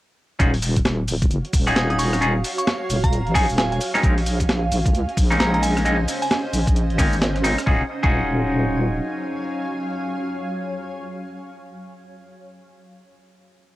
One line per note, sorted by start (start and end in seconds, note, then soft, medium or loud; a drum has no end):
0.39 1.06 D#1 loud
0.39 0.50 C#4 medium
0.39 0.50 D#4 medium
0.39 0.50 F4 medium
0.39 3.81 F#4 medium
0.39 0.50 F#4 medium
0.39 0.50 G#4 medium
0.39 7.68 F5 medium
0.39 kick loud
0.39 closed hi-hat medium
0.39 shaker soft
0.54 open hi-hat medium
0.62 open hi-hat loud
0.62 shaker medium
0.76 3.81 C#5 medium
0.76 kick medium
0.76 closed hi-hat medium
0.76 shaker soft
0.85 snare loud
0.85 shaker soft
1.06 1.20 D#1 medium
1.06 4.49 F5 medium
1.06 open hi-hat loud
1.06 shaker medium
1.22 1.30 D#1 loud
1.22 kick loud
1.22 closed hi-hat medium
1.22 shaker soft
1.31 1.43 F#1 loud
1.31 closed hi-hat medium
1.31 shaker soft
1.45 closed hi-hat soft
1.53 1.74 D#1 loud
1.53 kick loud
1.53 open hi-hat loud
1.53 shaker medium
1.67 2.19 C#4 medium
1.67 2.20 D#4 medium
1.67 2.19 F4 medium
1.67 2.20 F#4 medium
1.67 2.19 G#4 medium
1.67 shaker soft
1.76 2.43 D#1 medium
1.76 1.85 D#6 medium
1.76 snare loud
1.76 closed hi-hat medium
1.76 shaker soft
1.90 1.96 D#6 medium
1.90 closed hi-hat soft
1.95 7.67 G#5 medium
1.99 2.16 C#6 medium
1.99 open hi-hat loud
1.99 shaker medium
2.13 cross-stick medium
2.13 shaker soft
2.21 2.32 C#4 medium
2.21 2.32 D#4 medium
2.21 2.32 F4 medium
2.21 2.32 F#4 medium
2.21 2.32 G#4 medium
2.21 closed hi-hat medium
2.21 shaker soft
2.44 open hi-hat loud
2.44 shaker medium
2.58 2.64 C#6 medium
2.58 closed hi-hat medium
2.58 shaker soft
2.67 2.76 C#6 medium
2.67 snare loud
2.67 shaker soft
2.90 3.02 D#1 medium
2.90 open hi-hat loud
2.90 shaker medium
3.04 3.28 D#1 loud
3.04 3.17 A#5 medium
3.04 kick loud
3.04 closed hi-hat medium
3.04 shaker soft
3.13 closed hi-hat medium
3.13 shaker soft
3.26 3.46 A#1 loud
3.26 closed hi-hat soft
3.35 3.46 C#4 medium
3.35 3.46 D#4 medium
3.35 3.46 F4 medium
3.35 3.46 F#4 medium
3.35 3.46 G#4 medium
3.35 3.52 G#5 medium
3.35 kick loud
3.35 open hi-hat loud
3.35 shaker medium
3.49 3.79 D#1 medium
3.49 shaker soft
3.58 3.67 G#5 medium
3.58 snare loud
3.58 closed hi-hat medium
3.58 shaker soft
3.72 3.78 G#5 medium
3.72 closed hi-hat medium
3.81 7.67 C#4 medium
3.81 open hi-hat loud
3.81 shaker medium
3.94 4.01 G#3 medium
3.94 4.01 A#3 medium
3.94 4.01 C4 medium
3.94 4.01 C#4 medium
3.94 4.01 D#4 loud
3.94 7.67 D#5 medium
3.94 cross-stick medium
3.94 shaker soft
4.03 4.70 A#1 loud
4.03 4.14 G#3 medium
4.03 4.14 A#3 medium
4.03 4.14 C4 medium
4.03 4.14 C#4 medium
4.03 4.14 D#4 medium
4.03 kick loud
4.03 closed hi-hat medium
4.03 shaker soft
4.18 open hi-hat medium
4.26 open hi-hat loud
4.26 shaker medium
4.40 7.67 C5 loud
4.40 kick medium
4.40 closed hi-hat medium
4.40 shaker soft
4.49 snare loud
4.49 shaker soft
4.72 4.84 A#1 loud
4.72 open hi-hat loud
4.72 shaker medium
4.86 4.93 A#1 loud
4.86 kick loud
4.86 closed hi-hat medium
4.86 shaker soft
4.94 5.07 C#2 medium
4.94 closed hi-hat medium
4.94 shaker soft
5.09 closed hi-hat soft
5.17 5.38 A#1 loud
5.17 kick loud
5.17 open hi-hat loud
5.17 shaker medium
5.30 5.83 G#3 medium
5.30 5.83 A#3 medium
5.30 5.83 C4 medium
5.30 5.83 C#4 medium
5.30 5.83 D#4 medium
5.30 shaker soft
5.40 6.06 A#1 medium
5.40 5.49 A#5 medium
5.40 snare loud
5.40 closed hi-hat medium
5.40 shaker soft
5.54 5.59 A#5 medium
5.54 closed hi-hat soft
5.62 5.79 G#5 medium
5.62 open hi-hat loud
5.62 shaker medium
5.77 cross-stick medium
5.77 shaker soft
5.85 5.96 G#3 medium
5.85 5.96 A#3 medium
5.85 5.96 C4 medium
5.85 5.96 C#4 medium
5.85 5.96 D#4 medium
5.85 closed hi-hat medium
5.85 shaker soft
6.08 open hi-hat loud
6.08 shaker medium
6.22 6.28 G#5 medium
6.22 open hi-hat medium
6.22 shaker soft
6.31 6.40 G#5 medium
6.31 snare loud
6.31 shaker soft
6.53 6.66 A#1 medium
6.53 open hi-hat loud
6.53 shaker medium
6.67 6.92 A#1 loud
6.67 kick loud
6.67 closed hi-hat medium
6.67 shaker soft
6.76 closed hi-hat medium
6.76 shaker soft
6.90 7.56 G#1 loud
6.90 closed hi-hat soft
6.98 7.15 G#3 medium
6.98 7.15 A#3 medium
6.98 7.15 C4 medium
6.98 7.15 C#4 medium
6.98 7.15 D#4 loud
6.98 kick loud
6.98 open hi-hat loud
6.98 shaker medium
7.13 shaker soft
7.22 snare loud
7.22 closed hi-hat medium
7.22 shaker soft
7.36 cross-stick soft
7.36 closed hi-hat medium
7.44 7.55 G#3 medium
7.44 7.55 A#3 medium
7.44 7.55 C4 medium
7.44 7.55 C#4 medium
7.44 7.55 D#4 loud
7.44 open hi-hat loud
7.44 shaker medium
7.59 cross-stick medium
7.59 shaker soft
7.66 7.82 D#1 loud
7.66 11.12 F#3 medium
7.66 7.82 C#4 medium
7.66 7.82 D#4 medium
7.66 7.82 F4 medium
7.66 7.82 F#4 medium
7.66 7.82 G#4 medium
7.66 kick loud
7.75 11.20 C#5 medium
7.83 11.28 F5 medium
7.88 11.33 G#5 medium
8.03 8.99 D#1 loud
8.03 11.49 C#4 medium
8.03 11.49 D#4 medium
8.03 11.49 F4 medium
8.03 11.49 F#4 medium
8.03 11.49 G#4 loud
8.03 kick loud